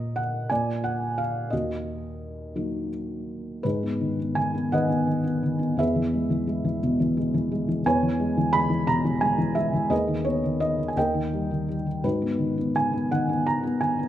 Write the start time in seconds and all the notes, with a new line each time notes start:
Already playing: A#2 A#4 D#5
0.16 F#5
0.50 A#2 D5 G#5
0.84 F#5
1.18 F5
1.50 D#2 F#4 D#5
2.55 F#3 A#3 D#4
3.63 G#2 D#4 G#4 B4
3.83 B3
4.01 D#3
4.20 B3
4.35 D#3 G#5
4.55 B3
4.72 D#3 B4 D#5 F#5
4.89 B3
5.07 D#3
5.24 B3
5.43 D#3
5.59 B3
5.77 E2 G#4 B4 E5
5.96 E3
6.14 G#3
6.30 E3
6.47 G#3
6.64 E3
6.83 B2
7.00 E3
7.17 G#3
7.34 E3
7.52 G#3
7.68 E3
7.86 E2 B4 C#5 G#5
8.03 E3
8.20 G#3
8.37 E3
8.53 G#3 B5
8.70 E3
8.87 B2 A#5
9.05 E3
9.21 G#3 G#5
9.38 E3
9.55 G#3 E5
9.73 E3
9.90 D#2 G#4 B4 D#5
10.08 D#3
10.25 B3 C#5
10.44 D#3
10.60 B3 D#5
10.79 D#3
10.88 G#5
10.97 D#2 A#4 D#5 G5
11.14 D#3
11.33 G3
11.51 D#3
11.68 G3
11.87 D#3
12.04 G#2 D#4 F#4 B4
12.22 B3
12.39 D#3
12.58 B3
12.76 D#3 G#5
12.93 B3
13.11 D#3 F#5
13.29 B3
13.47 D#3 A#5
13.63 B3
13.81 D#3 G#5
13.99 B3